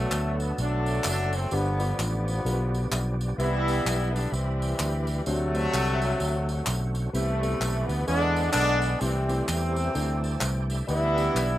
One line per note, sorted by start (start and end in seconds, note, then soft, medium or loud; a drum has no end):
0.00 0.36 B2 medium
0.00 0.55 D3 medium
0.00 0.55 F#3 medium
0.00 1.49 F#3 medium
0.00 0.36 A3 loud
0.00 0.50 A3 medium
0.00 1.48 A3 medium
0.00 0.50 B3 medium
0.00 1.48 B3 medium
0.00 0.50 D4 medium
0.00 1.49 D4 medium
0.00 0.50 F#4 medium
0.00 0.50 A4 medium
0.00 1.48 A4 medium
0.11 0.51 D2 medium
0.11 clap medium
0.11 tambourine medium
0.40 0.58 B3 medium
0.40 tambourine medium
0.58 0.98 B1 medium
0.58 1.06 D3 loud
0.58 1.49 F#3 medium
0.58 1.49 A3 medium
0.58 1.06 D4 loud
0.58 tambourine medium
0.86 tambourine medium
1.04 1.45 F#1 loud
1.04 1.33 D3 loud
1.04 1.33 D4 loud
1.04 clap loud
1.04 tambourine loud
1.33 1.53 C4 loud
1.33 tambourine medium
1.51 1.92 G1 loud
1.51 2.23 G2 medium
1.51 1.99 D3 medium
1.51 1.99 F3 medium
1.51 2.44 F3 medium
1.51 1.70 G3 medium
1.51 2.44 G3 medium
1.51 1.59 A#3 medium
1.51 1.70 B3 medium
1.51 2.00 B3 loud
1.51 1.70 D4 medium
1.51 2.44 D4 medium
1.51 1.70 F4 medium
1.51 2.44 G4 medium
1.51 1.70 B4 medium
1.51 tambourine medium
1.58 2.47 B3 medium
1.79 2.37 G3 medium
1.79 2.37 B3 medium
1.79 2.37 D4 medium
1.79 2.37 F4 medium
1.79 2.37 B4 medium
1.79 tambourine medium
1.99 2.39 A1 loud
1.99 3.17 D3 medium
1.99 3.17 F3 medium
1.99 3.18 B3 medium
1.99 clap medium
1.99 tambourine medium
2.28 tambourine medium
2.45 2.85 B1 loud
2.45 3.16 B2 medium
2.45 3.24 G3 medium
2.45 3.37 G3 medium
2.45 2.53 A#3 soft
2.45 3.24 B3 medium
2.45 3.24 D4 medium
2.45 3.37 D4 medium
2.45 3.24 F4 medium
2.45 3.37 G4 medium
2.45 2.52 A#4 medium
2.45 tambourine medium
2.51 3.40 B3 medium
2.51 3.27 B4 loud
2.74 tambourine medium
2.91 3.32 B1 medium
2.91 clap loud
2.91 tambourine loud
3.21 tambourine medium
3.38 3.78 C2 loud
3.38 4.10 C3 medium
3.38 3.46 D3 medium
3.38 4.10 E3 loud
3.38 5.22 G3 medium
3.38 4.29 G3 medium
3.38 3.57 G3 medium
3.38 4.29 B3 medium
3.38 3.57 B3 medium
3.38 3.57 C4 medium
3.38 5.22 E4 medium
3.38 4.10 E4 loud
3.38 3.57 E4 medium
3.38 5.22 G4 medium
3.38 5.22 B4 medium
3.38 3.57 B4 medium
3.38 tambourine medium
3.44 5.25 E3 medium
3.67 4.24 G3 medium
3.67 4.24 B3 medium
3.67 4.24 E4 medium
3.67 4.24 G4 medium
3.67 tambourine medium
3.85 4.26 B1 loud
3.85 clap medium
3.85 tambourine medium
4.12 4.32 D3 medium
4.12 4.32 D4 loud
4.12 tambourine medium
4.32 4.72 C2 loud
4.32 5.23 E3 medium
4.32 5.23 G3 medium
4.32 5.08 C4 medium
4.32 tambourine medium
4.62 tambourine medium
4.79 5.19 D2 loud
4.79 clap loud
4.79 tambourine loud
5.07 tambourine medium
5.26 5.67 D2 loud
5.26 6.91 C3 loud
5.26 7.10 D3 medium
5.26 5.97 D3 medium
5.26 6.91 F#3 loud
5.26 7.10 F#3 medium
5.26 6.91 A3 loud
5.26 5.44 A3 medium
5.26 7.10 A3 medium
5.26 5.44 C4 medium
5.26 7.10 C4 medium
5.26 5.44 D4 medium
5.26 5.33 F4 medium
5.26 5.45 F#4 medium
5.26 5.44 C5 medium
5.26 tambourine medium
5.33 7.13 F#4 medium
5.54 6.11 A3 medium
5.54 6.11 C4 medium
5.54 6.11 D4 medium
5.54 5.59 E4 medium
5.54 6.11 C5 medium
5.54 tambourine medium
5.60 6.14 F#4 medium
5.74 6.13 C2 medium
5.74 clap medium
5.74 tambourine medium
6.02 tambourine medium
6.20 6.60 D2 medium
6.20 tambourine medium
6.49 tambourine medium
6.66 7.07 B1 medium
6.66 clap loud
6.66 tambourine loud
6.95 tambourine medium
7.13 7.53 C2 loud
7.13 7.84 C3 medium
7.13 8.06 C3 medium
7.13 8.04 E3 medium
7.13 8.06 E3 medium
7.13 7.31 G3 medium
7.13 8.06 G3 medium
7.13 7.85 A3 loud
7.13 7.31 B3 medium
7.13 7.31 C4 medium
7.13 7.31 E4 medium
7.13 8.06 G4 medium
7.13 7.31 B4 medium
7.13 8.06 B4 medium
7.13 tambourine medium
7.41 7.98 G3 medium
7.41 7.98 B3 medium
7.41 7.98 C4 medium
7.41 7.46 D4 medium
7.41 7.99 A4 medium
7.41 tambourine medium
7.47 8.01 E4 medium
7.60 7.84 B1 medium
7.60 clap medium
7.60 tambourine medium
7.87 8.05 D2 loud
7.87 8.06 B3 medium
7.87 tambourine medium
8.07 8.48 E2 loud
8.07 8.50 D3 loud
8.07 8.78 E3 medium
8.07 8.99 E3 medium
8.07 8.86 G#3 medium
8.07 9.00 G#3 medium
8.07 8.53 G#3 medium
8.07 8.86 B3 medium
8.07 8.99 B3 medium
8.07 8.53 B3 medium
8.07 8.50 D4 loud
8.07 8.86 D4 medium
8.07 8.99 D4 medium
8.07 8.86 E4 medium
8.07 9.00 G#4 medium
8.07 8.86 B4 medium
8.07 tambourine medium
8.36 tambourine medium
8.52 8.94 B1 medium
8.52 8.96 D3 loud
8.52 8.98 G#3 medium
8.52 8.98 B3 medium
8.52 8.96 D4 loud
8.52 clap loud
8.52 tambourine loud
8.82 tambourine medium
8.99 9.41 C2 loud
8.99 9.71 C3 medium
8.99 9.93 E3 medium
8.99 9.49 E3 medium
8.99 9.93 G3 medium
8.99 9.48 G3 medium
8.99 9.18 A3 medium
8.99 9.93 A3 medium
8.99 9.46 C4 loud
8.99 9.18 C4 medium
8.99 9.93 C4 medium
8.99 9.18 E4 medium
8.99 9.08 F#4 medium
8.99 9.18 G4 medium
8.99 9.19 C5 medium
8.99 tambourine medium
9.08 9.94 G4 medium
9.28 9.85 A3 medium
9.28 9.85 C4 medium
9.28 9.86 E4 medium
9.28 9.85 G4 medium
9.28 9.86 C5 medium
9.28 tambourine medium
9.47 9.88 E2 medium
9.47 10.65 C3 medium
9.47 10.66 E3 medium
9.47 10.66 G3 medium
9.47 10.65 C4 loud
9.47 clap medium
9.47 tambourine medium
9.76 tambourine medium
9.94 10.35 D2 loud
9.94 10.65 D3 medium
9.94 10.86 E3 medium
9.94 10.86 A3 medium
9.94 10.73 A3 medium
9.94 10.86 C4 medium
9.94 10.86 D4 medium
9.94 10.73 D4 medium
9.94 10.73 E4 medium
9.94 10.73 G4 medium
9.94 10.86 G4 medium
9.94 10.73 C5 medium
9.94 tambourine medium
10.23 10.40 A5 medium
10.23 tambourine medium
10.41 10.81 C2 loud
10.41 10.67 G5 medium
10.41 clap loud
10.41 tambourine loud
10.70 10.88 E5 medium
10.70 tambourine medium
10.87 11.28 D2 loud
10.87 11.58 D3 medium
10.87 11.58 E3 loud
10.87 11.58 G3 loud
10.87 11.58 B3 medium
10.87 11.05 D4 medium
10.87 11.58 D4 medium
10.87 11.58 E4 loud
10.87 11.05 G4 medium
10.87 11.58 G4 medium
10.87 11.06 B4 medium
10.87 tambourine medium
11.16 11.58 D4 medium
11.16 11.58 G4 medium
11.16 11.58 D5 medium
11.16 tambourine medium
11.35 11.58 B1 loud
11.35 clap medium
11.35 tambourine loud